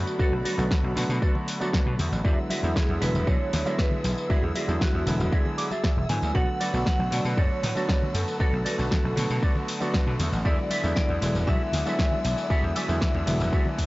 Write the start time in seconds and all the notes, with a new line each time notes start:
Already playing: D3 F#3 A3 B3 F#4 A4 D5 F#5 B5
0.07 tambourine
0.19 D3 F#3 A3 B3 F#4 A4 B4 D5, muted slap bass stroke, kick, tambourine
0.32 B1
0.45 F#4 A4 B4 D5, open hi-hat, tambourine, high conga
0.57 B1 D3 F#3 A3 B3 F#4, tambourine
0.71 kick, snare, tambourine
0.84 B1
0.95 B2 D3 F#3 A3 B3 F#4, muted clean electric guitar stroke, open hi-hat, tambourine, low conga
1.09 B2, muted clean electric guitar stroke, tambourine, muted conga
1.21 F#4 A4 B4 D5, kick, tambourine
1.35 low conga
1.47 muted clean electric guitar stroke, open hi-hat, tambourine
1.60 D3 F#3 A3 B3 F#4 A4 B4 D5, tambourine, high conga
1.73 kick, snare
1.86 B2, high conga
1.99 E2, open hi-hat, tambourine, low conga
2.12 A1, tambourine
2.24 D3 F#3 G#3 B3 E4 F#4 G#4 D5 E5 E6, kick, tambourine
2.50 F#4 G#4 D5 E5, open hi-hat, tambourine, high conga
2.63 E2 D3 F#3 G#3 B3 E4, tambourine
2.76 G#4, kick, snare, tambourine
2.89 E2, muted conga
3.01 E1 D3 F#3 G#3 B3 E4 B4, muted clean electric guitar stroke, open hi-hat, tambourine
3.14 E1, muted clean electric guitar stroke, tambourine, muted conga
3.27 B1 F#4 G#4 C#5 D5 E5, kick, tambourine
3.53 D2, muted clean electric guitar stroke, snare, open hi-hat, tambourine, low conga
3.65 D3 F#3 G#3 B3 E4 F#4 G#4 D5 E5, tambourine, high conga
3.79 B4, kick, snare, tambourine
3.91 high conga, low conga
4.04 B1, open hi-hat, tambourine
4.18 tambourine
4.29 D3 F#3 G#3 B3 E4 F#4 G#4 D5 E5, muted slap bass stroke, kick, tambourine
4.43 E2
4.55 F#4 G#4 D5 E5, open hi-hat, tambourine, high conga
4.68 E2 D3 F#3 G#3 B3 E4, tambourine
4.81 F#4, kick, snare, tambourine
4.94 E2
5.06 E1 D3 F#3 G#3 B3 E4, muted clean electric guitar stroke, open hi-hat, tambourine, low conga
5.20 E1, muted clean electric guitar stroke, tambourine, muted conga
5.32 F#4 G#4 D5 E5, kick, tambourine
5.46 low conga
5.58 D5, muted clean electric guitar stroke, open hi-hat, tambourine
5.71 F#4 G#4 D5 E5, tambourine, high conga
5.84 E5, kick, snare, tambourine
5.97 E1, high conga
6.09 G#2 D3 F#3 G#3 B3 E4 G#5, open hi-hat, tambourine, low conga
6.22 D2, tambourine
6.34 B1 D3 F#3 A3 B3 F#4 A4 B4 D5 F#5 A5, kick, tambourine
6.60 F#4 A4 B4 D5, open hi-hat, ride, tambourine, high conga
6.73 B1 D3 F#3 A3 B3 F#4, tambourine
6.86 F#5, kick, snare, tambourine
6.99 B1, muted conga
7.11 B2 D3 F#3 A3 B3 F#4 D5, muted clean electric guitar stroke, open hi-hat, ride, tambourine
7.24 B2, muted clean electric guitar stroke, tambourine, muted conga
7.37 F#2 F#4 A4 B4 C#5 D5, kick, tambourine
7.63 A2, snare, open hi-hat, ride, tambourine, low conga
7.75 D3 F#3 A3 B3 F#4 A4 B4 D5, tambourine, high conga
7.89 kick, snare, tambourine
8.02 high conga, low conga
8.14 F#2 A4, open hi-hat, ride, tambourine
8.28 tambourine
8.39 D3 F#3 A3 B3 F#4 A4 B4 D5, muted slap bass stroke, kick, tambourine
8.53 B1
8.65 F#4 A4 B4 D5, open hi-hat, ride, tambourine, high conga
8.78 B1 D3 F#3 A3 B3 F#4, tambourine
8.91 kick, snare, tambourine
9.04 B1
9.16 B2 D3 F#3 A3 B3 F#4, muted clean electric guitar stroke, open hi-hat, ride, tambourine, low conga
9.29 B2, muted clean electric guitar stroke, tambourine, muted conga
9.42 F#4 A4 B4 D5, kick, tambourine
9.55 low conga
9.68 muted clean electric guitar stroke, open hi-hat, ride, tambourine
9.80 D3 F#3 A3 B3 F#4 A4 B4 D5, tambourine, high conga
9.94 kick, snare, tambourine
10.07 B2, high conga
10.19 E2, open hi-hat, ride, tambourine, low conga
10.32 A1, tambourine
10.44 E2 D3 F#3 G#3 B3 E4 F#4 G#4 D5 E5 G#5 E6, kick, tambourine
10.70 F#4 G#4 D5 E5, open hi-hat, ride, tambourine, high conga
10.83 E2 D3 F#3 G#3 B3 E4, tambourine
10.96 D5, kick, snare, tambourine
11.09 E2, muted conga
11.21 E1 D3 F#3 G#3 B3 E4, muted clean electric guitar stroke, open hi-hat, ride, tambourine
11.35 E1, muted clean electric guitar stroke, tambourine, muted conga
11.47 B1 F#4 G#4 D5 E5, kick, tambourine
11.73 D2, muted clean electric guitar stroke, snare, open hi-hat, ride, tambourine, low conga
11.85 D3 F#3 G#3 B3 E4 F#4 G#4 D5 E5, tambourine, high conga
11.99 kick, snare, tambourine
12.12 high conga, low conga
12.25 B1, open hi-hat, ride, tambourine
12.38 tambourine
12.50 D3 F#3 G#3 B3 E4 F#4 G#4 D5 E5, muted slap bass stroke, kick, tambourine
12.63 E2
12.76 F#4 G#4 D5 E5, open hi-hat, ride, tambourine, high conga
12.88 E2 D3 F#3 G#3 B3 E4, tambourine
13.01 kick, snare, tambourine
13.14 E2, muted conga
13.26 E1 D3 F#3 G#3 B3 E4, muted clean electric guitar stroke, open hi-hat, ride, tambourine, low conga
13.40 E1, muted clean electric guitar stroke, tambourine, muted conga
13.52 F#4 G#4 D5 E5, kick, tambourine, reverse cymbal
13.66 low conga
13.78 muted clean electric guitar stroke, kick, open hi-hat, ride, tambourine